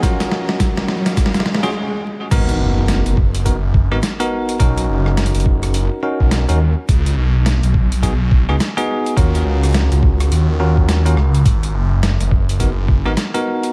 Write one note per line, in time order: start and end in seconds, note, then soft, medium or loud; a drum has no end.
0.00 1.74 C#4 medium
0.00 1.43 C#4 medium
0.00 1.43 F4 medium
0.00 1.43 F#4 medium
0.00 1.43 A#4 loud
0.00 1.74 D#5 medium
0.00 kick loud
0.00 snare loud
0.00 closed hi-hat medium
0.00 riser medium
0.20 snare medium
0.20 closed hi-hat soft
0.32 snare loud
0.42 1.74 F#3 medium
0.49 snare medium
0.60 kick loud
0.60 snare loud
0.60 closed hi-hat medium
0.78 snare medium
0.88 snare loud
1.06 1.74 F5 medium
1.06 snare medium
1.06 closed hi-hat medium
1.17 kick loud
1.17 snare loud
1.17 closed hi-hat medium
1.17 swell medium
1.26 snare medium
1.34 snare medium
1.34 closed hi-hat soft
1.40 snare medium
1.46 snare loud
1.54 snare medium
1.63 1.69 C#4 loud
1.63 1.69 F4 medium
1.63 1.69 F#4 medium
1.63 1.69 G#4 loud
1.63 snare medium
1.63 closed hi-hat soft
2.31 2.58 G#1 medium
2.31 3.17 B3 loud
2.31 3.17 D#4 medium
2.31 3.17 F#4 medium
2.31 3.17 A#4 loud
2.31 kick loud
2.31 closed hi-hat medium
2.31 crash loud
2.31 impact medium
2.49 closed hi-hat soft
2.60 3.03 F#1 loud
2.88 snare loud
2.88 closed hi-hat medium
3.06 3.89 F#1 loud
3.06 closed hi-hat soft
3.17 kick loud
3.34 closed hi-hat medium
3.45 3.55 B3 medium
3.45 3.55 D#4 medium
3.45 3.55 F#4 medium
3.45 3.55 A#4 medium
3.45 kick medium
3.45 closed hi-hat medium
3.74 kick loud
3.92 4.01 G#1 loud
3.92 3.98 B3 loud
3.92 3.98 D#4 medium
3.92 3.98 F#4 medium
3.92 3.98 A#4 loud
3.92 cross-stick soft
4.03 snare loud
4.03 closed hi-hat medium
4.20 4.57 B3 loud
4.20 4.57 D#4 medium
4.20 4.57 F#4 medium
4.20 4.57 A#4 loud
4.20 closed hi-hat medium
4.49 closed hi-hat soft
4.60 4.87 B1 loud
4.60 6.00 C#4 medium
4.60 6.00 D#4 medium
4.60 6.00 F#4 medium
4.60 6.00 A#4 loud
4.60 kick loud
4.60 closed hi-hat medium
4.78 closed hi-hat soft
4.89 5.32 F#1 medium
5.06 cross-stick soft
5.17 snare loud
5.17 closed hi-hat medium
5.26 closed hi-hat medium
5.34 5.89 F#1 loud
5.34 closed hi-hat medium
5.40 closed hi-hat soft
5.46 kick loud
5.63 cross-stick medium
5.63 closed hi-hat medium
5.74 closed hi-hat medium
6.03 6.45 C#4 medium
6.03 6.45 D#4 medium
6.03 6.45 F#4 medium
6.03 6.45 A#4 loud
6.20 6.46 B1 loud
6.20 kick medium
6.31 snare loud
6.31 closed hi-hat medium
6.49 6.75 D#2 loud
6.49 6.58 C#4 medium
6.49 6.58 D#4 medium
6.49 6.58 F#4 medium
6.49 6.58 A#4 medium
6.49 closed hi-hat medium
6.89 7.15 C#2 loud
6.89 kick loud
6.89 closed hi-hat medium
7.06 closed hi-hat soft
7.17 7.60 B1 loud
7.46 snare loud
7.46 closed hi-hat medium
7.63 8.46 B1 loud
7.63 closed hi-hat soft
7.74 kick loud
7.92 closed hi-hat medium
8.03 8.12 B3 medium
8.03 8.12 D#4 medium
8.03 8.12 F#4 medium
8.03 8.12 G#4 loud
8.03 kick medium
8.03 closed hi-hat medium
8.31 kick loud
8.49 8.58 C#2 medium
8.49 8.55 B3 loud
8.49 8.55 D#4 medium
8.49 8.55 F#4 medium
8.49 8.55 G#4 loud
8.49 cross-stick soft
8.60 snare loud
8.60 closed hi-hat medium
8.77 9.14 B3 loud
8.77 9.14 D#4 medium
8.77 9.14 F#4 medium
8.77 9.14 G#4 loud
8.77 closed hi-hat medium
9.06 closed hi-hat soft
9.17 9.44 D#2 loud
9.17 10.57 C#4 medium
9.17 10.57 F4 medium
9.17 10.57 F#4 medium
9.17 10.57 A#4 loud
9.17 kick loud
9.17 closed hi-hat medium
9.35 closed hi-hat soft
9.46 9.89 C#2 loud
9.63 cross-stick soft
9.63 closed hi-hat soft
9.65 closed hi-hat soft
9.69 closed hi-hat soft
9.71 closed hi-hat soft
9.73 snare loud
9.73 closed hi-hat soft
9.74 closed hi-hat medium
9.92 10.30 C#2 loud
9.92 closed hi-hat soft
10.03 kick loud
10.20 cross-stick soft
10.20 closed hi-hat medium
10.32 11.15 D#2 loud
10.32 closed hi-hat medium
10.60 11.02 C#4 medium
10.60 11.02 F4 medium
10.60 11.02 F#4 medium
10.60 11.02 A#4 loud
10.77 kick medium
10.89 snare loud
10.89 closed hi-hat medium
11.05 11.15 C#4 medium
11.05 11.15 F4 medium
11.05 11.15 F#4 medium
11.05 11.15 A#4 medium
11.05 closed hi-hat medium
11.17 11.44 C#2 medium
11.17 cross-stick soft
11.35 closed hi-hat soft
11.46 11.72 G#1 loud
11.46 kick loud
11.46 closed hi-hat medium
11.63 closed hi-hat soft
11.74 12.18 F#1 loud
12.03 snare loud
12.03 closed hi-hat medium
12.20 13.03 F#1 loud
12.20 closed hi-hat soft
12.31 kick loud
12.49 closed hi-hat soft
12.60 12.69 B3 medium
12.60 12.69 D#4 medium
12.60 12.69 F#4 medium
12.60 12.69 A#4 medium
12.60 kick medium
12.60 closed hi-hat medium
12.88 kick loud
13.06 13.15 G#1 loud
13.06 13.12 B3 loud
13.06 13.12 D#4 medium
13.06 13.12 F#4 medium
13.06 13.12 A#4 loud
13.06 cross-stick soft
13.17 snare loud
13.17 closed hi-hat medium
13.34 13.72 B3 loud
13.34 13.72 D#4 medium
13.34 13.72 F#4 medium
13.34 13.72 A#4 loud
13.34 closed hi-hat soft
13.63 closed hi-hat soft